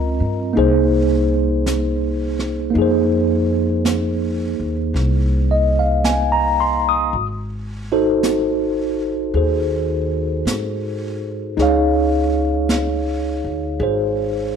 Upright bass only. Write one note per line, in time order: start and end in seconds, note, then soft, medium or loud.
0.00 0.18 C#2 soft
0.20 0.54 G2 medium
0.57 2.71 C2 medium
2.75 4.56 F2 medium
4.60 4.92 D#2 medium
4.94 7.10 C2 medium
7.13 9.30 G#1 medium
9.34 10.42 D#2 medium
10.45 11.53 G#2 medium
11.57 13.41 C#2 medium
13.44 13.77 D2 medium
13.80 14.56 G#1 medium